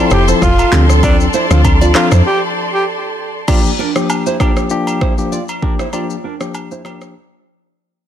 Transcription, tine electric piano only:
0.00 0.24 F3 medium
0.00 0.24 C4 medium
0.00 0.24 E4 medium
0.00 0.24 A4 loud
0.28 0.47 F3 medium
0.28 0.48 C4 medium
0.28 0.48 E4 medium
0.28 0.48 A4 medium
0.72 1.01 F3 medium
0.72 1.01 C4 medium
0.72 1.01 D4 medium
0.72 1.01 A4 loud
1.03 1.25 F3 medium
1.03 1.25 C4 medium
1.03 1.25 D4 medium
1.03 1.25 A4 loud
1.50 1.92 F3 medium
1.50 1.92 C4 medium
1.50 1.92 D4 medium
1.50 1.92 A4 medium
1.95 2.23 F3 medium
1.95 2.23 C4 medium
1.95 2.23 D4 medium
1.95 2.24 A4 medium
3.48 3.69 F3 medium
3.48 3.70 A#3 medium
3.48 3.70 D4 medium
3.48 3.70 G4 loud
3.95 4.37 F3 medium
3.95 4.37 A#3 medium
3.95 4.37 D4 medium
3.95 4.37 G4 medium
4.40 4.68 F3 medium
4.40 4.68 A#3 medium
4.40 4.68 D4 medium
4.40 4.68 G4 medium
4.70 5.14 F3 medium
4.70 5.14 A#3 medium
4.70 5.14 D4 medium
4.70 5.14 G4 loud
5.18 5.37 F3 medium
5.18 5.37 A#3 medium
5.18 5.38 D4 medium
5.18 5.38 G4 medium
5.62 5.84 F3 medium
5.62 5.84 A#3 medium
5.62 5.84 D4 medium
5.62 5.84 G4 medium
5.93 6.14 F3 medium
5.93 6.14 A#3 medium
5.93 6.14 D4 medium
5.93 6.15 G4 loud
6.40 6.81 F3 medium
6.40 6.81 A#3 medium
6.40 6.82 D4 medium
6.40 6.82 G4 medium
6.84 7.13 F3 medium
6.84 7.13 A#3 medium
6.84 7.13 D4 medium
6.84 7.13 G4 medium

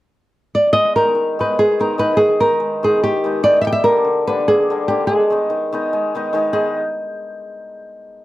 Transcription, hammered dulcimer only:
0.73 0.95 G#3 medium
0.95 1.14 D#3 medium
0.95 1.17 G#3 medium
0.95 1.10 B3 soft
0.95 1.10 D#4 medium
1.15 1.38 D#3 medium
1.39 1.78 D#3 medium
1.39 1.57 G#3 medium
1.39 1.53 B3 medium
1.39 1.53 D#4 medium
1.59 1.78 G#3 medium
1.79 1.97 D#3 medium
1.79 1.97 G#3 soft
1.79 1.93 B3 medium
1.79 1.94 D#4 medium
1.98 2.17 D#3 medium
1.98 2.21 G#3 medium
1.98 2.12 B3 medium
1.98 2.13 D#4 medium
2.18 2.39 D#3 medium
2.40 2.82 D#3 medium
2.40 2.59 G#3 soft
2.40 2.55 B3 medium
2.40 2.55 D#4 medium
2.60 2.82 G#3 medium
2.83 3.03 D#3 medium
2.83 3.04 G#3 medium
2.83 2.98 B3 medium
2.83 2.98 D#4 medium
3.04 3.23 D#3 medium
3.24 3.42 D#3 medium
3.24 3.42 G#3 medium
3.24 3.39 B3 medium
3.24 3.39 D#4 medium
3.43 3.66 D#3 medium
3.43 3.66 G#3 medium
3.43 3.57 B3 medium
3.43 3.58 D#4 medium
3.62 3.85 G3 medium
3.86 4.03 D3 medium
3.86 4.08 G3 medium
3.86 4.01 A#3 medium
3.86 4.01 D4 medium
4.05 4.26 D3 medium
4.28 4.69 D3 medium
4.28 4.69 G3 medium
4.28 4.43 A#3 medium
4.28 4.43 D4 medium
4.48 4.70 A#3 medium
4.70 4.87 D3 medium
4.70 4.88 G3 medium
4.70 4.84 A#3 medium
4.70 4.85 D4 medium
4.88 5.13 D3 medium
4.88 5.13 G3 medium
4.88 5.04 A#3 medium
4.88 5.03 D4 medium
5.09 5.30 G#3 medium
5.30 5.49 D#3 medium
5.30 5.54 G#3 soft
5.30 5.46 B3 medium
5.30 5.46 D#4 medium
5.50 5.71 D#3 medium
5.72 6.14 D#3 medium
5.72 5.92 G#3 medium
5.72 5.89 B3 medium
5.72 5.89 D#4 medium
5.93 6.14 G#3 medium
6.15 6.32 D#3 medium
6.15 6.32 G#3 medium
6.15 6.30 B3 medium
6.15 6.30 D#4 medium
6.33 6.52 D#3 medium
6.33 6.52 G#3 medium
6.33 6.49 B3 medium
6.33 6.49 D#4 medium
6.53 6.75 D#3 medium
6.53 6.76 G#3 medium
6.53 6.75 B3 medium
6.53 6.75 D#4 medium

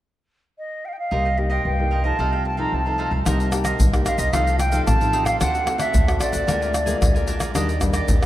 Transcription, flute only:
0.58 0.87 D#5 medium
0.85 0.94 F5 medium
0.85 0.90 G5 medium
0.93 0.98 G5 medium
0.99 1.40 F5 medium
1.38 1.53 D#5 medium
1.51 1.65 G5 medium
1.66 2.03 G5 medium
2.05 2.43 A5 medium
2.46 2.59 A5 medium
2.59 2.76 A#5 medium
2.74 3.14 A5 medium
4.06 4.21 F5 medium
4.19 4.35 D#5 medium
4.33 4.58 F5 medium
4.59 4.84 G5 medium
4.86 5.27 A5 medium
5.25 5.39 F5 medium
5.40 5.78 F#5 medium
5.80 6.18 E5 medium
6.21 7.24 D5 medium

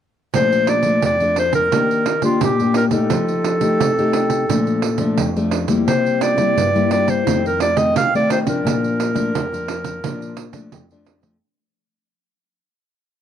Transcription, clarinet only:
0.35 0.71 C5 medium
0.69 1.04 D5 medium
1.05 1.37 D5 medium
1.39 1.54 C5 medium
1.55 2.20 A#4 medium
2.24 2.41 F4 medium
2.44 2.75 G4 medium
2.77 2.85 A#4 medium
2.93 5.49 A4 medium
5.88 6.24 C5 medium
6.22 6.91 D5 medium
6.92 7.11 D5 medium
7.10 7.44 C5 medium
7.47 7.62 A#4 medium
7.62 7.78 D5 medium
7.77 7.95 D#5 medium
7.97 8.13 F5 medium
8.16 8.31 D5 medium
8.32 8.39 C5 medium
8.49 10.69 A#4 medium

